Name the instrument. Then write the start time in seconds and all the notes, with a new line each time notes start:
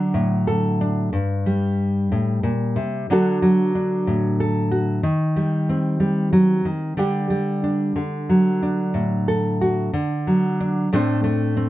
nylon-string guitar
Already playing: D3 F#3 D4
0.14 A2
0.47 A4
0.81 D4
1.13 G2
1.46 G3
2.12 A2
2.43 A#2
2.76 C3
3.10 D3 F#3 D4 F#4 A4
3.42 F#3
3.75 D4
4.07 A2
4.40 A4
4.71 F#4
5.03 D#3
5.36 G3
5.69 C4
6.00 G3
6.33 F#3
6.65 D#3
6.97 D3 G3 D4 G4
7.30 G3
7.64 D4
7.96 D3
8.29 F#3
8.63 D4
8.94 A2
9.28 A4
9.61 F#4
9.93 D3
10.27 F#3
10.60 D4
10.93 A2 A3 C4 D4 C5
11.24 A3
11.57 C4